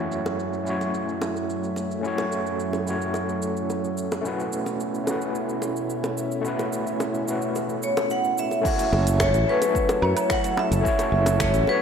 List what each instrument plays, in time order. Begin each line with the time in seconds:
Already playing: analog synth pad F#2 F#3 A3 E4, tine electric piano A3 C#4 E4 F#4 C#5
0.12 cabasa
0.26 high bongo, cabasa
0.40 cabasa
0.53 cabasa
0.63 tine electric piano A3 C#4 E4, cabasa
0.68 tine electric piano F#4 C#5
0.81 high bongo, cabasa
0.94 cabasa
1.09 cabasa
1.22 high bongo, cabasa
1.36 cabasa
1.50 cabasa
1.63 cabasa
1.76 high bongo, cabasa
1.91 cabasa
2.01 tine electric piano A3 C#4 E4, cabasa
2.06 tine electric piano F#4 C#5
2.18 high bongo, cabasa
2.32 cabasa
2.47 cabasa
2.60 cabasa
2.73 high bongo, cabasa
2.83 tine electric piano A3 C#4 E4
2.87 tine electric piano F#4 C#5, cabasa
3.02 cabasa
3.14 high bongo, cabasa
3.29 cabasa
3.42 cabasa
3.57 cabasa
3.70 high bongo, cabasa
3.85 cabasa
3.98 cabasa
4.12 high bongo, cabasa
4.21 analog synth pad B2 C#4 E4, tine electric piano A3 C#4 E4
4.25 tine electric piano F#4 B4, cabasa
4.40 cabasa
4.53 cabasa
4.66 high bongo, cabasa
4.80 cabasa
4.95 cabasa
5.04 tine electric piano A3 C#4 E4, high bongo, cabasa
5.09 tine electric piano F#4 B4
5.22 cabasa
5.35 cabasa
5.49 cabasa
5.62 high bongo, cabasa
5.76 cabasa
5.90 cabasa
6.04 high bongo, cabasa
6.18 cabasa
6.32 cabasa
6.41 tine electric piano A3 C#4 E4, cabasa
6.46 tine electric piano F#4 B4
6.59 high bongo, cabasa
6.73 cabasa
6.87 cabasa
7.00 high bongo, cabasa
7.15 cabasa
7.24 tine electric piano A3 C#4 E4
7.28 tine electric piano F#4 B4, cabasa
7.42 cabasa
7.55 high bongo, cabasa
7.70 cabasa
7.83 vibraphone C#5, cabasa
7.97 high bongo, cabasa
8.10 vibraphone F#5, cabasa
8.25 cabasa
8.38 vibraphone E5, cabasa
8.51 high bongo, cabasa
8.61 tine electric piano A3 C#4 E4, analog synth pad C#4 E4 A4, kick, crash
8.66 analog synth pad F#3, tine electric piano F#4 C#5, cabasa
8.79 closed hi-hat, cabasa
8.93 fretless electric bass F#1, high bongo
9.07 closed hi-hat, cabasa
9.20 vibraphone C#5, finger snap, kick, high bongo, cabasa
9.34 fretless electric bass A1, closed hi-hat, cabasa
9.44 tine electric piano A3 C#4 E4
9.49 tine electric piano F#4 C#5, vibraphone B4
9.62 closed hi-hat, high bongo, cabasa
9.75 kick, cabasa
9.89 closed hi-hat, high bongo, cabasa
10.02 fretless electric bass F#2, vibraphone C#5, low woodblock
10.17 closed hi-hat, cabasa, low woodblock
10.30 vibraphone F#5, finger snap, kick, high bongo, cabasa
10.44 closed hi-hat, cabasa
10.57 vibraphone E5, high bongo
10.71 fretless electric bass F#1, closed hi-hat, cabasa
10.81 tine electric piano A3 C#4 E4, kick
10.86 tine electric piano F#4 C#5, cabasa
10.99 closed hi-hat, high bongo, cabasa
11.12 fretless electric bass F#1
11.26 closed hi-hat, high bongo, cabasa
11.40 vibraphone C#5, finger snap, kick, cabasa
11.54 fretless electric bass A1, closed hi-hat, cabasa
11.64 tine electric piano A3 C#4 E4, high bongo
11.69 tine electric piano F#4 C#5, vibraphone B4